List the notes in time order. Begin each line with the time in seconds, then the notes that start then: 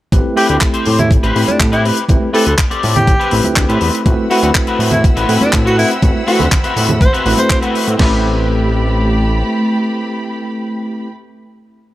0.12 A1 A3 C4 E4 G4 B4, kick, closed hi-hat, high conga
0.36 A3 C4 E4 G4 B4 B5, open hi-hat
0.49 D2 G4, closed hi-hat
0.61 kick, clap, closed hi-hat
0.74 C4 G4 C5, closed hi-hat
0.85 A2, open hi-hat, high conga
0.99 E4, closed hi-hat, low conga
1.11 kick, closed hi-hat
1.23 A1 C4 G4 B4, closed hi-hat
1.35 A2 A3 C4 E4 G4 B5, open hi-hat
1.47 D4, closed hi-hat, high conga
1.60 A2, kick, clap, closed hi-hat
1.72 C4 E4 G4 B4, closed hi-hat
1.85 A3 C4 E4 G4 B4, open hi-hat
1.97 closed hi-hat
2.08 A1 A3 C4 E4 G4 B4, kick, closed hi-hat, high conga
2.33 A3 C4 E4 G4 A4 B4, open hi-hat
2.46 D2 A4, closed hi-hat
2.58 kick, clap, closed hi-hat
2.70 C4 G4 D5, closed hi-hat
2.83 A2, open hi-hat, high conga
2.96 G4, closed hi-hat, low conga
3.07 kick, closed hi-hat
3.20 C4 G4 B4, closed hi-hat
3.31 A1 A3 C4 E4 G4 B4, open hi-hat
3.44 D2 A3 C4 E4 G4 B4, closed hi-hat, high conga
3.56 D2, kick, clap, closed hi-hat
3.69 A2 C4 G4 B4, closed hi-hat
3.81 E2, open hi-hat
3.95 closed hi-hat
4.06 A1 A3 C4 E4 F#4 B4 F#5 B5 E6, kick, closed hi-hat, high conga
4.30 A3 C4 E4 F#4 B4, open hi-hat
4.43 D2 F#4, closed hi-hat
4.55 kick, clap, closed hi-hat
4.67 C4 E4 F#4 B4, closed hi-hat
4.79 A2, open hi-hat, high conga
4.91 E4, closed hi-hat, low conga
5.04 kick, closed hi-hat
5.16 A1 C4 E4 F#4 B4, closed hi-hat
5.29 A2 A3 C4 E4 F#4 B4, open hi-hat
5.41 D4, closed hi-hat, high conga
5.53 A2, kick, clap, closed hi-hat
5.65 C4 E4 F#4 B4, closed hi-hat
5.78 A3 C4 E4 F#4 B4, open hi-hat
5.91 closed hi-hat
6.02 A1 A3 C4 E4 F#4 B4, kick, closed hi-hat, high conga
6.27 A3 C4 E4 F#4 B4, open hi-hat
6.40 D2, closed hi-hat, low conga
6.52 kick, clap, closed hi-hat
6.64 C4 E4 F#4 B4, closed hi-hat
6.76 A2, open hi-hat, high conga
6.89 closed hi-hat, low conga
7.01 C5, kick, closed hi-hat
7.13 C4 E4 F#4 B4, closed hi-hat
7.25 A1 A3 C4 E4 F#4 B4, open hi-hat
7.37 A3 C4 E4 F#4 B4 C5, closed hi-hat, high conga
7.50 C5, kick, clap, closed hi-hat
7.62 C4 E4 F#4 B4, closed hi-hat
7.75 open hi-hat
7.87 A2, closed hi-hat
7.97 A1 A3 C4 E4 G4 B4 B5, kick, snare, crash